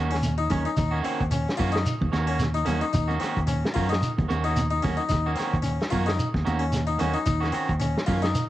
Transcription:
Already playing: fingered electric bass D#2, clean electric guitar D#3 A#3 C#4
0.00 clean electric guitar F#4
0.11 harpsichord C#4, snare, closed hi-hat
0.23 closed hi-hat, high conga, shekere
0.38 harpsichord D#4
0.50 fingered electric bass D#2, clean electric guitar D#3 C#4, harpsichord C#4, muted clean electric guitar stroke, kick, closed hi-hat, high conga, low conga, shekere
0.65 harpsichord D#4, closed hi-hat
0.77 fingered electric bass D#2, harpsichord D#4, kick, closed hi-hat, shekere
0.91 clean electric guitar A#3 C#4 F#4
1.03 clean electric guitar D#3 A#3 C#4 F#4, harpsichord C4, muted fingered electric bass stroke, closed hi-hat, shekere
1.21 fingered electric bass D#2, kick, closed hi-hat
1.31 harpsichord C#4, closed hi-hat, shekere
1.48 snare, closed hi-hat
1.57 fingered electric bass F#2, clean electric guitar D#3 A#3 C#4 F#4, harpsichord F4, kick, open hi-hat, high conga, low conga, shekere
1.72 harpsichord D#4, snare
1.86 closed hi-hat, shekere
2.01 fingered electric bass D#2, kick, high conga, low conga
2.12 fingered electric bass D#2, clean electric guitar D#3 A#3 C#4 F#4, snare, closed hi-hat, high conga, shekere
2.26 clean electric guitar A#3 C#4 F#4, harpsichord C#4, closed hi-hat
2.39 snare, closed hi-hat, high conga, shekere
2.54 harpsichord D#4, closed hi-hat
2.65 fingered electric bass D#2, clean electric guitar D#3 A#3 C#4 F#4, harpsichord C#4, closed hi-hat, high conga, low conga, shekere
2.81 harpsichord D#4, closed hi-hat
2.93 fingered electric bass D#2, harpsichord D#4, kick, closed hi-hat, shekere
3.08 clean electric guitar A#3 C#4 F#4, closed hi-hat, high conga
3.20 clean electric guitar D#3 A#3 C#4 F#4, harpsichord C4, snare, closed hi-hat, shekere
3.37 fingered electric bass D#2, kick, closed hi-hat
3.47 harpsichord C#4, closed hi-hat, shekere
3.64 snare, high conga
3.74 fingered electric bass F#2, clean electric guitar D#3 A#3 C#4 F#4, harpsichord F4, kick, open hi-hat, high conga, low conga, shekere
3.89 harpsichord D#4, snare, closed hi-hat
4.02 closed hi-hat, shekere
4.18 fingered electric bass D#2, kick, closed hi-hat, high conga, low conga
4.28 fingered electric bass D#2, clean electric guitar D#3 A#3 C#4 F#4, closed hi-hat, high conga, shekere
4.44 clean electric guitar A#3 C#4 F#4, harpsichord D#4, closed hi-hat
4.56 closed hi-hat, high conga, shekere
4.70 harpsichord D#4
4.82 fingered electric bass D#2, clean electric guitar A#3 C#4 F#4, harpsichord C#4, muted clean electric guitar stroke, kick, closed hi-hat, high conga, low conga, shekere
4.97 harpsichord D#4, closed hi-hat
5.09 fingered electric bass D#2, harpsichord D#4, kick, closed hi-hat, shekere
5.13 snare
5.26 clean electric guitar A#3 C#4 F#4
5.36 clean electric guitar D#3 A#3 C#4 F#4, harpsichord C4, muted fingered electric bass stroke, closed hi-hat, shekere
5.40 snare
5.54 fingered electric bass D#2, kick, closed hi-hat
5.62 harpsichord C#4, closed hi-hat, shekere
5.81 snare, closed hi-hat
5.90 fingered electric bass F#2, clean electric guitar D#3 A#3 C#4 F#4, harpsichord F4, kick, open hi-hat, high conga, low conga, shekere
6.06 harpsichord D#4, snare
6.19 closed hi-hat, shekere
6.34 fingered electric bass D#2, kick, snare, high conga
6.45 fingered electric bass D#2, clean electric guitar D#3 A#3 C#4 F#4, closed hi-hat, high conga, shekere
6.59 harpsichord C#4, closed hi-hat
6.72 snare, closed hi-hat, high conga, shekere
6.87 harpsichord D#4, closed hi-hat
6.98 fingered electric bass D#2, clean electric guitar D#3 A#3 C#4 F#4, harpsichord C#4, closed hi-hat, high conga, low conga, shekere
7.14 harpsichord D#4, closed hi-hat
7.26 fingered electric bass D#2, harpsichord D#4, kick, closed hi-hat, shekere
7.40 clean electric guitar A#3 C#4 F#4, snare, closed hi-hat
7.52 clean electric guitar D#3 C#4 F#4, harpsichord C4, muted fingered electric bass stroke, closed hi-hat, shekere
7.69 fingered electric bass D#2, kick, closed hi-hat
7.80 harpsichord C#4, closed hi-hat, shekere
7.97 snare, high conga
8.06 fingered electric bass F#2, clean electric guitar D#3 A#3 C#4, harpsichord F4, kick, open hi-hat, high conga, low conga, shekere
8.22 harpsichord D#4, snare, closed hi-hat
8.35 closed hi-hat, shekere

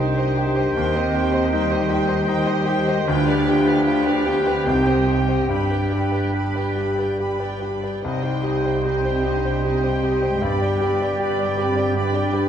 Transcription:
Already playing: double bass section C2, grand piano C2 D#4 G4 C5, cello section C3, bassoon D#3, viola section D#4, violin section G4 C5, clarinet G4, oboe C5, flute G5
0.00 french horn section D4
0.16 violin section D#4 D#5, viola section G4, grand piano C5
0.36 viola section D#4, violin section G4 C5, grand piano G4
0.55 violin section D#4 D#5, viola section G4, grand piano C5
0.74 double bass section D#2, grand piano D#2, cello section D#3, french horn section C4, viola section D#4, violin section C5 G5
0.94 viola section G4, grand piano C5, violin section D#5
1.13 viola section D#4, grand piano G4, violin section C5 G5
1.32 viola section G4, grand piano C5, violin section D#5
1.51 french horn section G3, viola section D#4, grand piano D#4, violin section C5 G5
1.69 viola section G4, grand piano C5, violin section D#5
1.89 viola section D#4, grand piano G4, violin section C5 G5
2.08 viola section G4, grand piano C5, violin section D#5
2.27 viola section D#4, grand piano D#4, violin section C5 G5
2.45 viola section G4, grand piano C5, violin section D#5
2.66 viola section D#4, grand piano G4, violin section C5 G5
2.87 viola section G4, grand piano C5, violin section D#5
3.08 grand piano D2, double bass section D2, cello section D3, bassoon F3, french horn section D4, viola section F4, clarinet G4, oboe B4, violin section B4 G5, flute G5
3.27 viola section G4, grand piano B4, violin section D5 F5
3.46 viola section F4, grand piano G4, violin section B4 G5
3.66 viola section G4, grand piano B4, violin section D5 F5
3.85 viola section F4, grand piano F4, violin section B4 G5
4.05 viola section G4, grand piano B4, violin section D5 F5
4.26 french horn section B3, viola section F4, grand piano G4, violin section B4 G5
4.45 viola section G4, grand piano B4, violin section D5 F5
4.66 grand piano C2, double bass section C2, cello section C3, bassoon D#3, french horn section C4, viola section D#4, oboe C5, violin section C5 G5
4.87 viola section G4, grand piano C5, violin section D#5
5.07 viola section D#4, grand piano G4, violin section C5 G5
5.28 viola section G4, grand piano C5, violin section D#5
5.48 double bass section G1, grand piano G2, cello section G2, bassoon G3, french horn section D4, viola section D4, oboe B4, violin section B4 B5
5.71 viola section G4, grand piano B4, violin section D5 G5
5.91 viola section D4, grand piano G4, violin section B4 B5
6.12 viola section G4, grand piano B4, violin section D5 G5
6.34 viola section D4, grand piano G4, violin section B4 B5
6.55 viola section G4, grand piano B4, violin section D5 G5
6.76 viola section D4, grand piano G4, violin section B4 B5
6.98 viola section G4, grand piano B4, violin section D5 G5
7.19 viola section D4, grand piano G4, violin section B4 B5
7.40 viola section G4, grand piano B4, violin section D5 G5
7.60 viola section D4, grand piano G4, violin section B4 B5
7.81 viola section G4, grand piano B4, violin section D5 G5
8.02 grand piano C2, double bass section C2, cello section C3, french horn section D#4, viola section D#4, clarinet G4, violin section C5 D#5, oboe C5, flute G5
8.23 viola section G4, grand piano C5, violin section D#5 G5
8.43 viola section D#4, grand piano G4, violin section C5 D#5
8.64 viola section G4, grand piano C5, violin section D#5 G5
8.83 viola section D#4, grand piano G4, violin section C5 D#5
9.04 french horn section C4, viola section G4, grand piano C5, violin section D#5 G5
9.23 french horn section D4, viola section D#4, grand piano G4, violin section C5 D#5
9.44 viola section G4, grand piano C5, violin section D#5 G5
9.63 french horn section C4, viola section D#4, grand piano G4, violin section C5 D#5
9.83 viola section G4, grand piano C5, violin section D#5 G5
10.03 viola section D#4, grand piano G4, violin section C5 D#5
10.23 french horn section G#3, viola section G4, grand piano C5, violin section D#5 G5
10.42 double bass section G1, grand piano G2, cello section G2, bassoon G3, french horn section B3, viola section B4, violin section D5, oboe D5
10.46 violin section B5
10.61 viola section G4, violin section B4 G5, grand piano D5
10.81 grand piano G4, viola section B4, violin section D5
10.85 violin section B5
11.01 viola section G4, violin section B4 G5, grand piano D5
11.19 grand piano G4, viola section B4, violin section D5 B5
11.39 viola section G4, violin section B4 G5, grand piano D5
11.58 french horn section C4, grand piano G4, viola section B4, violin section D5 B5
11.76 viola section G4, violin section B4 G5, grand piano D5
11.95 french horn section D4, grand piano G4, viola section B4, violin section D5 B5
12.14 viola section G4, violin section B4 G5, grand piano D5
12.33 grand piano G4, viola section B4, violin section D5 B5

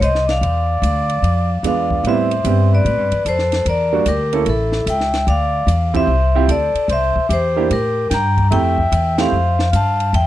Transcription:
0.01 upright bass C2, trumpet C5, vibraphone D#5, hi-hat pedal, ride
0.15 snare
0.27 trumpet D5, vibraphone F5, snare, ride
0.41 upright bass E2, ride
0.82 upright bass D2, hi-hat pedal, ride
1.09 ride
1.22 upright bass F2, ride
1.63 upright bass E2, grand piano G#3 B3 D4 F4, trumpet D5, hi-hat pedal, ride
1.67 vibraphone F5
1.91 kick
2.04 upright bass A2, grand piano G3 B3 C4 E4, trumpet C5, ride
2.09 vibraphone E5
2.31 ride
2.44 upright bass G2, grand piano G3 B3 C4 G4, hi-hat pedal, ride
2.73 trumpet B4, vibraphone D5
2.85 upright bass A2, ride
2.98 upright bass G2
3.12 upright bass E2, ride
3.25 upright bass F2, trumpet A4, vibraphone C5, hi-hat pedal, ride
3.39 snare
3.52 snare, ride
3.65 upright bass E2, trumpet A#4, ride
3.70 vibraphone D5
3.92 grand piano G3 A#3 D4 F#4
4.05 upright bass D2, trumpet G4, vibraphone A#4, hi-hat pedal, ride
4.33 grand piano A#3 C#4 E4 A4, ride
4.46 upright bass A1, trumpet E4, vibraphone A4, ride
4.72 snare
4.86 upright bass C#2, trumpet E5, vibraphone G5, hi-hat pedal, ride
5.00 snare
5.14 snare, ride
5.27 upright bass D2, trumpet D5, vibraphone F5, ride
5.67 upright bass E2, hi-hat pedal, ride
5.94 grand piano C4 E4 F4 G4, trumpet C5, vibraphone E5, kick, ride
6.07 upright bass C2
6.35 grand piano C4 E4 F4 G4
6.48 upright bass D2, trumpet A4, vibraphone D5, hi-hat pedal, ride
6.74 muted upright bass stroke, ride
6.88 upright bass C2, trumpet C5, ride
6.93 vibraphone E5
7.16 muted upright bass stroke, kick
7.29 upright bass E2, trumpet G4, hi-hat pedal, ride
7.33 vibraphone C5
7.56 grand piano A#3 D4 E4 G4
7.70 upright bass A2, trumpet G4, vibraphone A#4, ride
8.10 upright bass G2, trumpet G5, vibraphone A#5, snare, hi-hat pedal, ride
8.37 kick, ride
8.51 upright bass F2, grand piano A3 C4 E4 G4, trumpet E5, vibraphone G5, ride
8.78 kick
8.92 upright bass E2, hi-hat pedal, ride
9.18 grand piano A3 C4 E4 G4, trumpet C5, vibraphone F5, snare, ride
9.32 upright bass F2
9.59 snare
9.72 upright bass G2, trumpet F5, vibraphone A5, hi-hat pedal, ride
10.00 ride
10.13 upright bass E2, trumpet E5, vibraphone G5, ride

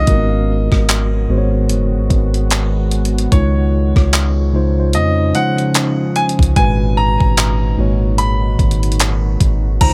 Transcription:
Already playing: tine electric piano C#3 F3 G#3 D#4 C5 D#5, grand piano D#5
0.07 808-style bass G#1, tine electric piano G#2 G#3 A#3 F#4 A#4, ambient pad D#3 G#3 B3 F#4, kick, closed hi-hat
0.15 tine electric piano B3
0.72 808-style bass G#1, kick, cross-stick
0.89 clap, closed hi-hat
1.29 808-style bass G#1, tine electric piano G#2 G#3 B3 F#4 C5
1.38 tine electric piano C#5
1.69 808-style bass F#1, closed hi-hat
1.94 808-style bass G#1
2.10 808-style bass G#1, kick, closed hi-hat
2.34 closed hi-hat
2.51 clap, closed hi-hat
2.91 closed hi-hat
3.05 closed hi-hat
3.18 closed hi-hat
3.32 808-style bass C#2, tine electric piano C#3 G#3 D#4 F4 C#5, ambient pad C#3 F3 C#4 D#4, grand piano C#5, kick, closed hi-hat
3.96 808-style bass C#2, kick, cross-stick
4.13 clap, closed hi-hat
4.53 tine electric piano C#3 G#3 D#4 F4 C5
4.77 tine electric piano C#3 G#3 D#4 F4 C5
4.93 808-style bass F2, grand piano D#5, closed hi-hat
5.34 tine electric piano C#3 F3 G#3 D#4 C5, grand piano F#5, closed hi-hat
5.58 closed hi-hat
5.74 clap, closed hi-hat
6.16 grand piano G#5, closed hi-hat
6.29 closed hi-hat
6.39 808-style bass C#2, kick, closed hi-hat
6.56 808-style bass G#1, tine electric piano G#2 A#2 G#3 F#4 B4, ambient pad D#3 G#3 D#4 F#4, grand piano G#5, kick, closed hi-hat
6.97 grand piano A#5
7.21 808-style bass G#1, kick
7.37 clap, closed hi-hat
7.78 808-style bass G#1, tine electric piano G#2 G#3 A#3 F#4 C#5
8.18 grand piano B5, closed hi-hat
8.59 808-style bass G#1, kick, closed hi-hat
8.71 closed hi-hat
8.83 closed hi-hat
8.92 closed hi-hat
9.00 clap, closed hi-hat
9.40 808-style bass G#1, kick, closed hi-hat
9.81 808-style bass C#2, tine electric piano C#3 G#3 D#4 F4 C5, ambient pad C#3 F3 C4 D#4, grand piano A#5, kick, closed hi-hat, crash

